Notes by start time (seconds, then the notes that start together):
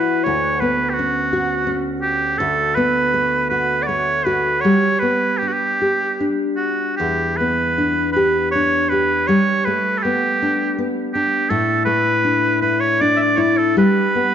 Already playing: E3 B3 E4 F#4 B4
0.23 D2 C#5
0.60 B3 B4
0.89 G4
0.94 F#4
0.99 C#4
1.33 F#4
1.67 C#4
2.02 G4
2.38 D2 A4
2.75 B3 B4
3.14 A3
3.49 F#4 B4
3.82 D5
3.86 A3 C#5
4.25 F#4 B4
4.61 G3 C#5
4.99 B3 B4
5.38 G4
5.42 D4
5.48 F#4
5.53 G4
5.82 G4
6.20 D4
6.56 F#4
6.96 E2 G4
7.37 B3 B4
7.78 D4
8.12 G4 B4
8.51 C#5
8.55 D4
8.89 G4 B4
9.27 G3 C#5
9.65 A3 B4
9.98 G4 A4
10.05 B3
10.42 D4
10.79 B3
11.13 D4 G4
11.49 A2 A4
11.85 A3 B4
12.25 D4
12.61 E4 B4
12.80 C#5
13.01 D4 D5
13.17 D5 E5
13.36 E4 C#5 D5
13.57 A4
13.77 G3 B4
14.15 B3